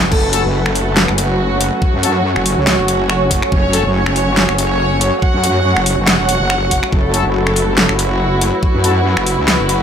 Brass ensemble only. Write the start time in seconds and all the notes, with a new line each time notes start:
0.33 C#4 F#4 A4
2.03 C#4 F#4 A4
3.73 C#4 F#4 A4
7.14 C#4 F#4 A4
8.84 C#4 F#4 A4